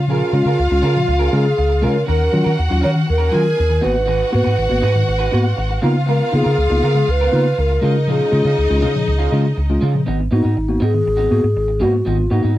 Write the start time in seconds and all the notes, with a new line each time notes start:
Already playing: C#3 F4 F5
0.08 A#2 F3 C#4 F4 G#4 A#4
0.33 C#3 G#3 C#4 F4, muted clean electric guitar stroke
0.46 C#3 C#4 F4 G#4 A#4
0.59 C#2
0.70 C#2 G#3 C#4 F4, muted clean electric guitar stroke
0.82 C#3 C#4 G#4 A#4
0.95 A#2 F3, muted clean electric guitar stroke
1.08 C#2, muted clean electric guitar stroke
1.19 C#4 G#4 A#4
1.32 C#3 G#3 C#4 F4 G#4 A#4
1.45 muted clean electric guitar stroke
1.57 C#2, muted clean electric guitar stroke
1.69 muted clean electric guitar stroke
1.82 C#3 G#3 C#4 F4 G#4 A#4
1.94 muted clean electric guitar stroke
2.06 D#2 D#3 C#4 F#4 A#4 F#5
2.33 D#3 F#3 C#4 F4, muted clean electric guitar stroke
2.44 D#3 C#4 F4 F#4 A#4
2.59 D#2
2.69 D#2 F#3 C#4 F4, muted clean electric guitar stroke
2.81 D#3 C#4 F#4 A#4 C#5
2.92 D#3, muted clean electric guitar stroke
3.06 D#2, muted clean electric guitar stroke
3.10 A#4
3.18 C#4 F#4 A#4
3.31 D#3 F#3 C#4 F4 F#4 G#4 A#4 G#5
3.56 D#2 C#4 F4, muted clean electric guitar stroke
3.70 D#3, muted clean electric guitar stroke
3.81 G#1 A#3 B3 D#4 F#4 B4 F#5
3.93 muted clean electric guitar stroke
4.06 G#2 D#3 D#4 F#4 B4
4.31 G#2 A#3 B3 F#4 B4, muted clean electric guitar stroke
4.44 G#2 B3 D#4 F#4 B4
4.58 G#1
4.69 G#1 A#3 B3 F#4, muted clean electric guitar stroke
4.81 G#2 D#4 F#4 B4
4.94 G#2 D#3, muted clean electric guitar stroke
5.06 G#1, muted clean electric guitar stroke
5.19 D#4 F#4 B4
5.31 G#2 A#3 B3 D#4 F#4 B4
5.43 muted clean electric guitar stroke
5.56 G#1, muted clean electric guitar stroke
5.69 muted clean electric guitar stroke
5.82 C#3 A#3 B3 D#4 F4 A#4 F5
5.94 muted clean electric guitar stroke
6.06 C#3 G#3 B3 F4 A#4
6.31 C#3 A#3 B3 D#4 F4, muted clean electric guitar stroke
6.36 G#4
6.44 C#3 B3 D#4 F4 A#4
6.58 C#2
6.69 C#2 A#3 B3 D#4 F4, muted clean electric guitar stroke
6.83 C#3 B3 F4 A#4
6.95 C#3 G#3, muted clean electric guitar stroke
7.08 C#2 B4, muted clean electric guitar stroke
7.21 B3 F4 A#4
7.32 C#3 A#3 B3 D#4 F4 A#4
7.45 muted clean electric guitar stroke
7.57 C#2 A#4, muted clean electric guitar stroke
7.70 muted clean electric guitar stroke
7.82 C#3 G#3 C#4 D#4 F4 D#5
7.95 muted clean electric guitar stroke
8.07 A#2 F3 G#3 C#4 F4 G#4
8.31 C#3 G#3 C#4 F4, muted clean electric guitar stroke
8.45 C#3 G#3 C#4 F4
8.58 C#2
8.69 C#2 G#3 C#4 F4, muted clean electric guitar stroke
8.80 C#3 G#3 C#4 F4
8.94 A#2 F3, muted clean electric guitar stroke
9.06 C#2, muted clean electric guitar stroke
9.19 G#3 C#4 F4
9.32 C#3 G#3 C#4 F4
9.45 muted clean electric guitar stroke
9.56 C#2, muted clean electric guitar stroke
9.70 G#3 C#4 F4, muted clean electric guitar stroke
9.81 C#3 G#3 C#4 F4
9.94 A#2 F3, muted clean electric guitar stroke
10.06 G#1 G#2 D#3 B3 D#4 F#4
10.19 muted clean electric guitar stroke
10.31 G#2 A#3 B3 D#4 F#4
10.43 G#2 B3 D#4 F#4
10.56 G#1, muted clean electric guitar stroke
10.68 A#3 B3 F#4, muted clean electric guitar stroke
10.80 G#2 B3 D#4 F#4 G#4
10.93 G#2 D#3, muted clean electric guitar stroke
11.05 G#1, muted clean electric guitar stroke
11.17 B3 D#4 F#4
11.30 G#2 A#3 B3 D#4 F#4
11.43 G#2, muted clean electric guitar stroke
11.56 G#1
11.68 muted clean electric guitar stroke
11.80 G#2 A#3 B3 D#4 F#4
11.93 muted clean electric guitar stroke
12.05 G#1 G#2 D#3 B3 D#4 F4 F#4
12.18 muted clean electric guitar stroke
12.30 G#2 A#3 B3 D#4 F#4
12.43 G#2 B3 D#4 F#4
12.55 muted clean electric guitar stroke